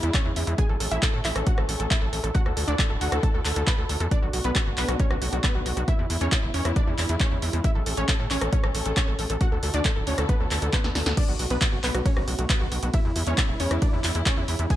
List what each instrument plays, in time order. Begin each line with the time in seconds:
Already playing: string section G#3 B3 E4
0.03 analog synth bass E2, synth pluck E4, closed hi-hat
0.14 synth pluck C#4 C#5, kick, clap, closed hi-hat
0.25 analog synth bass E2, synth pluck E4
0.36 analog synth bass E2, synth pluck E4, open hi-hat
0.47 analog synth bass E2, synth pluck E4, closed hi-hat
0.58 string section A3 C#4, synth pluck G#4 G#5, kick, closed hi-hat
0.69 analog synth bass A1, synth pluck A4
0.80 analog synth bass A1, synth pluck A4, open hi-hat
0.91 analog synth bass A1, synth pluck E4 E5, closed hi-hat
1.03 synth pluck A4, kick, clap, closed hi-hat
1.14 analog synth bass A2, synth pluck A4
1.25 analog synth bass A1, synth pluck E4 E5, clap, open hi-hat
1.36 analog synth bass A1, synth pluck A4, cross-stick, closed hi-hat
1.47 synth pluck F#4 F#5, kick, closed hi-hat
1.58 analog synth bass A1, synth pluck A4, cross-stick
1.69 analog synth bass A1, synth pluck A4, open hi-hat
1.80 analog synth bass A1, synth pluck A4, closed hi-hat
1.91 synth pluck E4 E5, kick, clap, closed hi-hat
2.02 analog synth bass A1, synth pluck A4
2.13 analog synth bass A1, synth pluck A4, open hi-hat
2.24 analog synth bass A1, synth pluck A4, closed hi-hat
2.35 string section D3 D4 E4 F#4 A4, synth pluck F#4 F#5, kick, closed hi-hat
2.46 analog synth bass D2, synth pluck A4, cross-stick
2.57 analog synth bass D2, synth pluck A4, open hi-hat
2.68 analog synth bass D2, synth pluck D4 D5, closed hi-hat
2.79 synth pluck A4, kick, clap, closed hi-hat
2.90 analog synth bass D1, synth pluck A4
3.01 analog synth bass D2, synth pluck F#4 F#5, open hi-hat
3.12 analog synth bass D2, synth pluck A4, cross-stick, closed hi-hat
3.23 synth pluck A4 A5, kick, closed hi-hat
3.34 analog synth bass D2, synth pluck A4
3.45 analog synth bass D2, synth pluck A4, clap, open hi-hat
3.56 analog synth bass D2, synth pluck A4, closed hi-hat
3.67 synth pluck B4 B5, kick, clap, closed hi-hat
3.78 analog synth bass D2, synth pluck A4
3.89 analog synth bass D2, synth pluck A4, open hi-hat
4.00 analog synth bass E2, synth pluck A4, closed hi-hat
4.11 string section A3 B3 D4, synth pluck D4 D5, kick, closed hi-hat
4.22 analog synth bass B1, synth pluck F#4
4.33 analog synth bass B1, synth pluck F#4, open hi-hat
4.44 analog synth bass B1, synth pluck B3 B4, closed hi-hat
4.55 synth pluck F#4, kick, clap, closed hi-hat
4.67 analog synth bass F#1, synth pluck F#4
4.77 analog synth bass B1, synth pluck B3 B4, clap, open hi-hat
4.88 analog synth bass B1, synth pluck F#4, cross-stick, closed hi-hat
5.00 synth pluck C#4 C#5, kick, closed hi-hat
5.11 analog synth bass B1, synth pluck F#4, cross-stick
5.22 analog synth bass B1, synth pluck F#4, open hi-hat
5.33 analog synth bass B1, synth pluck F#4, closed hi-hat
5.44 synth pluck B3 B4, kick, clap, closed hi-hat
5.55 analog synth bass B1, synth pluck F#4
5.66 analog synth bass B1, synth pluck F#4, open hi-hat
5.77 analog synth bass B1, synth pluck F#4, closed hi-hat
5.88 string section G#3 E4, synth pluck E4 E5, kick, closed hi-hat
5.99 analog synth bass E2, synth pluck E4
6.10 analog synth bass E2, synth pluck E4, open hi-hat
6.21 analog synth bass E2, synth pluck C#4 C#5, closed hi-hat
6.32 synth pluck E4, kick, clap, closed hi-hat
6.43 analog synth bass E1, synth pluck E4
6.54 analog synth bass E2, synth pluck C#4 C#5, open hi-hat
6.65 analog synth bass E2, synth pluck E4, cross-stick, closed hi-hat
6.76 synth pluck D4 D5, kick, closed hi-hat
6.87 analog synth bass E2, synth pluck E4
6.98 analog synth bass E2, synth pluck E4, clap, open hi-hat
7.09 analog synth bass E2, synth pluck E4, closed hi-hat
7.20 synth pluck C#4 C#5, kick, clap, closed hi-hat
7.31 analog synth bass E2, synth pluck E4
7.42 analog synth bass E2, synth pluck E4, open hi-hat
7.53 analog synth bass E2, synth pluck E4, closed hi-hat
7.64 string section A3 C#4, synth pluck E4 E5, kick, closed hi-hat
7.75 analog synth bass A1, synth pluck A4
7.86 analog synth bass A1, synth pluck A4, open hi-hat
7.97 analog synth bass A1, synth pluck C#4 C#5, closed hi-hat
8.08 synth pluck A4, kick, clap, closed hi-hat
8.20 analog synth bass A2, synth pluck A4
8.31 analog synth bass A1, synth pluck C#4 C#5, clap, open hi-hat
8.41 analog synth bass A1, synth pluck A4, cross-stick, closed hi-hat
8.53 synth pluck C#4 C#5, kick, closed hi-hat
8.64 analog synth bass A1, synth pluck A4, cross-stick
8.75 analog synth bass A1, synth pluck A4, open hi-hat
8.86 analog synth bass A1, synth pluck A4, closed hi-hat
8.97 synth pluck C#4 C#5, kick, clap, closed hi-hat
9.08 analog synth bass A1, synth pluck A4
9.19 analog synth bass A1, synth pluck A4, open hi-hat
9.30 analog synth bass A1, synth pluck A4, closed hi-hat
9.41 string section D3 D4 E4 F#4 A4, synth pluck F#4 F#5, kick, closed hi-hat
9.52 analog synth bass D2, synth pluck A4
9.63 analog synth bass D2, synth pluck A4, open hi-hat
9.74 analog synth bass D2, synth pluck D4 D5, closed hi-hat
9.85 synth pluck A4, kick, clap, closed hi-hat
9.96 analog synth bass D1, synth pluck A4
10.07 analog synth bass D2, synth pluck C#4 C#5, open hi-hat
10.18 analog synth bass D2, synth pluck A4, cross-stick, closed hi-hat
10.29 synth pluck B3 B4, kick, closed hi-hat
10.40 analog synth bass D2, synth pluck A4
10.51 analog synth bass D2, synth pluck A4, clap, open hi-hat
10.62 analog synth bass D2, synth pluck A4, closed hi-hat
10.73 synth pluck B3 B4, kick, clap, closed hi-hat
10.84 analog synth bass D2, synth pluck A4, snare
10.95 analog synth bass D2, synth pluck A4, snare, open hi-hat
11.06 analog synth bass D2, synth pluck A4, snare, closed hi-hat
11.17 string section A3 B3, synth pluck D4 D5, kick, closed hi-hat, crash, ride
11.28 analog synth bass B1, synth pluck F#4
11.39 analog synth bass B1, synth pluck F#4, open hi-hat
11.50 analog synth bass B1, synth pluck B3 B4, closed hi-hat
11.61 synth pluck F#4, kick, clap, closed hi-hat, ride
11.72 analog synth bass F#1, synth pluck F#4
11.84 analog synth bass B1, synth pluck B3 B4, clap, open hi-hat
11.95 analog synth bass B1, synth pluck F#4, cross-stick, closed hi-hat
12.06 synth pluck C#4 C#5, kick, closed hi-hat, ride
12.17 analog synth bass B1, synth pluck F#4, cross-stick
12.28 analog synth bass B1, synth pluck F#4, open hi-hat
12.39 analog synth bass B1, synth pluck F#4, closed hi-hat
12.50 synth pluck B3 B4, kick, clap, closed hi-hat, ride
12.61 analog synth bass B1, synth pluck F#4
12.72 analog synth bass B1, synth pluck F#4, open hi-hat
12.83 analog synth bass B1, synth pluck F#4, closed hi-hat
12.94 string section G#3 E4, synth pluck E4 E5, kick, closed hi-hat, ride
13.05 analog synth bass E2, synth pluck E4
13.16 analog synth bass E2, synth pluck E4, open hi-hat
13.27 analog synth bass E2, synth pluck C#4 C#5, closed hi-hat
13.38 synth pluck E4, kick, clap, closed hi-hat, ride
13.49 analog synth bass E1, synth pluck E4
13.60 analog synth bass E2, synth pluck C#4 C#5, open hi-hat
13.71 analog synth bass E2, synth pluck E4, cross-stick, closed hi-hat
13.82 synth pluck D4 D5, kick, closed hi-hat, ride
13.93 analog synth bass E2, synth pluck E4
14.04 analog synth bass E2, synth pluck E4, clap, open hi-hat
14.15 analog synth bass E2, synth pluck E4, closed hi-hat
14.26 synth pluck C#4 C#5, kick, clap, closed hi-hat, ride
14.37 analog synth bass E2, synth pluck E4
14.48 analog synth bass E2, synth pluck E4, open hi-hat
14.59 analog synth bass E2, synth pluck E4, closed hi-hat
14.70 string section G#3 A3 C#4, synth pluck G#4 G#5, kick, closed hi-hat, ride